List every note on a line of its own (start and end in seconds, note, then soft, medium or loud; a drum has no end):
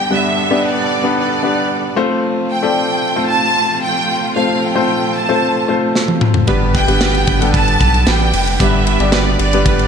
0.00 1.93 D3 medium
0.00 1.93 G3 medium
0.00 0.10 B3 medium
0.00 1.93 B3 medium
0.00 0.10 D4 medium
0.00 0.11 G4 medium
0.00 0.11 B4 medium
0.00 0.11 D5 medium
0.00 0.12 G5 loud
0.10 0.86 G2 medium
0.10 0.48 B3 medium
0.10 0.48 D4 medium
0.10 0.48 G4 medium
0.10 1.95 A4 medium
0.10 0.48 B4 medium
0.10 0.48 D5 medium
0.10 0.65 E5 loud
0.51 1.00 B3 medium
0.51 1.00 D4 medium
0.51 1.00 G4 medium
0.51 1.00 B4 medium
0.51 1.00 D5 medium
0.66 1.18 D5 loud
1.03 1.41 B3 medium
1.03 1.41 D4 medium
1.03 1.40 G4 medium
1.03 1.40 B4 medium
1.03 1.41 D5 medium
1.19 1.94 D5 medium
1.43 1.96 B3 medium
1.43 1.97 D4 medium
1.43 1.97 G4 medium
1.43 1.97 B4 medium
1.43 1.97 D5 medium
1.96 6.44 C3 medium
1.96 6.44 F3 medium
1.96 2.58 A3 loud
1.96 6.44 A3 medium
1.96 2.58 C4 loud
1.96 2.58 F4 medium
1.96 6.44 F4 loud
1.96 2.58 A4 medium
1.96 2.58 C5 loud
2.51 3.26 G5 loud
2.62 3.12 A3 medium
2.62 3.12 C4 medium
2.62 3.12 F4 medium
2.62 3.12 A4 medium
2.62 3.12 D5 medium
3.16 4.14 A3 medium
3.16 4.14 C4 medium
3.16 4.14 F4 medium
3.16 4.14 A4 medium
3.16 4.14 C5 medium
3.30 3.83 A5 loud
3.84 4.33 G5 loud
4.36 4.73 A3 medium
4.36 4.73 C4 medium
4.36 4.73 F4 medium
4.36 4.72 A4 medium
4.36 4.73 C5 medium
4.36 4.63 F5 medium
4.64 5.16 G5 loud
4.75 5.24 A3 medium
4.75 5.24 C4 medium
4.75 5.24 F4 medium
4.75 5.24 A4 medium
4.75 5.25 C5 medium
5.16 5.69 A5 medium
5.29 5.65 A3 medium
5.29 5.65 C4 medium
5.29 5.66 F4 medium
5.29 5.66 A4 medium
5.29 5.66 C5 medium
5.68 6.42 A3 medium
5.68 6.42 C4 medium
5.68 6.42 F4 medium
5.68 6.42 A4 medium
5.68 6.42 C5 medium
5.95 snare medium
6.08 high tom medium
6.21 mid tom loud
6.34 floor tom loud
6.47 6.85 G1 loud
6.47 7.23 G2 medium
6.47 9.88 D3 medium
6.47 6.84 G3 medium
6.47 6.74 G3 medium
6.47 9.88 G3 medium
6.47 6.84 B3 medium
6.47 9.88 B3 medium
6.47 6.74 B3 loud
6.47 6.84 D4 medium
6.47 6.75 D4 medium
6.47 6.84 G4 medium
6.47 9.88 G4 medium
6.47 6.84 B4 medium
6.47 6.73 B4 loud
6.47 kick loud
6.47 ride medium
6.74 7.01 B3 medium
6.74 7.00 D4 medium
6.74 7.01 B4 medium
6.74 7.51 G5 loud
6.74 kick loud
6.74 ride medium
6.88 7.25 G1 loud
6.88 7.37 G3 medium
6.88 7.37 B3 medium
6.88 7.37 D4 medium
6.88 7.37 G4 medium
6.88 7.37 B4 medium
6.88 ride soft
7.00 7.27 G3 medium
7.00 7.27 B3 medium
7.00 7.28 D4 loud
7.00 7.25 B4 loud
7.00 snare loud
7.00 ride medium
7.15 ride soft
7.26 7.77 G1 loud
7.26 7.54 B3 medium
7.26 7.53 D4 medium
7.26 7.53 B4 medium
7.26 kick loud
7.26 ride medium
7.41 8.39 G3 medium
7.41 8.39 B3 medium
7.41 8.39 D4 medium
7.41 8.39 G4 medium
7.41 8.39 A4 medium
7.41 ride medium
7.53 7.80 G3 medium
7.53 7.80 B3 medium
7.53 7.81 D4 medium
7.53 7.78 B4 medium
7.53 8.08 A5 loud
7.53 kick loud
7.53 ride medium
7.68 ride soft
7.80 8.05 B1 loud
7.80 8.07 B3 medium
7.80 8.06 D4 medium
7.80 8.07 B4 medium
7.80 kick medium
7.80 ride medium
7.94 ride soft
8.06 8.32 A1 loud
8.06 8.33 G3 medium
8.06 8.34 B3 medium
8.06 8.34 D4 medium
8.06 8.32 B4 loud
8.06 8.61 G5 loud
8.06 snare loud
8.06 ride medium
8.33 8.58 F1 medium
8.33 8.60 B3 medium
8.33 8.59 D4 medium
8.33 8.60 B4 medium
8.33 open hi-hat medium
8.33 ride medium
8.47 ride soft
8.59 8.97 G1 loud
8.59 9.36 G2 medium
8.59 8.86 G3 loud
8.59 8.97 G3 medium
8.59 8.97 B3 medium
8.59 8.87 B3 loud
8.59 8.87 D4 loud
8.59 8.97 D4 medium
8.59 8.97 G4 medium
8.59 8.97 B4 medium
8.59 8.85 B4 medium
8.59 9.14 E5 loud
8.59 kick loud
8.59 hi-hat pedal medium
8.59 ride medium
8.86 9.12 B3 medium
8.86 9.12 D4 medium
8.86 9.13 B4 medium
8.86 ride medium
9.00 9.37 G1 loud
9.00 9.49 G3 medium
9.00 9.49 B3 medium
9.00 9.49 D4 medium
9.00 9.49 G4 medium
9.00 9.49 D5 medium
9.00 ride soft
9.12 9.39 G3 medium
9.12 9.39 B3 medium
9.12 9.40 D4 medium
9.12 9.37 B4 loud
9.12 9.40 D5 medium
9.12 snare loud
9.12 ride medium
9.38 9.88 G1 loud
9.38 9.66 B3 medium
9.38 9.65 D4 medium
9.38 9.66 B4 medium
9.38 9.65 D5 loud
9.38 ride medium
9.53 9.88 G3 medium
9.53 9.88 B3 medium
9.53 9.88 D4 medium
9.53 9.88 G4 medium
9.53 9.88 B4 medium
9.53 ride medium
9.65 9.88 G3 medium
9.65 9.88 B3 medium
9.65 9.88 D4 medium
9.65 9.88 B4 medium
9.65 9.88 D5 medium
9.65 kick loud
9.65 ride medium
9.79 ride soft